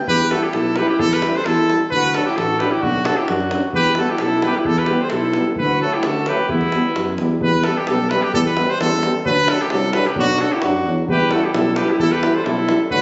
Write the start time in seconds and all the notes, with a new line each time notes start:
0.07 E2 G4 B4, davul low
0.21 davul high
0.31 G3 E4 F#4 A4, davul high
0.43 E4 G4
0.53 B1 E4 A4, davul high
0.76 G3 E4 G4 B4, davul high
0.88 E4 G4
0.99 E2 E4 A4, davul low
1.12 G4 B4, davul high
1.22 G3 E4, davul high
1.36 A4 C5
1.46 E2 E4 A4, davul high
1.70 G3 E4, davul high
1.91 D2 B4, davul low
1.95 F#4
2.14 F#3 D4 F#4 A4, davul high
2.26 E4 G4
2.36 A1 F#4 A4, davul high
2.59 F#3 D4 G4 B4, davul high
2.70 E4 G4
2.81 B1 D4 F#4, davul low
2.96 davul high
3.05 F#3 D4 F#4 A4, davul high
3.18 E4 G4, davul high
3.28 F#2 D4 F#4, davul high
3.40 davul high
3.51 F#3 D4, davul high
3.63 davul high
3.73 E2 G4 B4, davul low
3.85 davul high
3.95 G3 B3 F#4 G4 A4 B4, davul high
4.10 E4 G4
4.18 B1 A4, davul high
4.24 E4
4.42 G3 B3 B4, davul high
4.47 G4
4.56 E4 G4
4.65 E2 E4 A4, davul low
4.77 B4, davul high
4.83 G4, davul high
4.89 G3 B3
5.01 C5
5.05 A4
5.10 B1 A4, davul high
5.15 E4
5.33 G3 B3, davul high
5.56 D2 B4, davul low
5.63 F#4
5.69 davul high
5.82 F#3 A3 F#4 A4
5.94 E4 G4
6.03 D2 F#4 A4, davul high
6.26 F#3 A3 G4 B4, davul high
6.49 E2 B3 E4, davul low
6.61 davul high
6.72 G3 B3, davul high
6.96 F#2, davul high
7.09 davul high
7.18 E2 G3 B3, davul high
7.31 davul high
7.41 E2 G3 B3 B4, davul low
7.64 G3 B3 A4, davul high
7.78 G4
7.87 B1 G3 B3 A4, davul high
8.10 G3 B3 B4, davul high
8.22 G4
8.34 E2 G3 B3 A4, davul low
8.46 B4, davul high
8.56 G3 B3, davul high
8.70 C5
8.79 E2 G3 B3 A4, davul high
9.02 G3 B3, davul high
9.25 D2 F#3 D4 B4, davul low
9.37 davul high
9.48 F#3 D4 A4, davul high
9.62 G4
9.70 C2 F#3 D4 A4, davul high
9.93 F#3 D4 B4, davul high
10.06 G4
10.16 B1 F#3 D4 F#4, davul low
10.28 davul high
10.38 F#3 D4 A4, davul high
10.42 F#4
10.52 E4 G4, davul high
10.62 F#2 F#3 D4 F#4, davul high
10.86 E2 F#3 D4
10.98 davul high
11.08 E2 G3 E4 G4 B4, davul low
11.20 davul high
11.31 G3 E4 F#4 A4, davul high
11.45 E4 G4
11.54 B1 G3 E4 A4, davul high
11.76 G3 E4 G4 B4, davul high
11.90 E4 G4
11.99 E2 G3 E4 A4, davul low
12.12 G4 B4, davul high
12.23 G3 E4, davul high
12.35 A4 C5
12.45 B1 G3 E4 A4, davul high
12.69 G3 E4, davul high
12.90 D2 F#3 D4 F#4 B4, davul low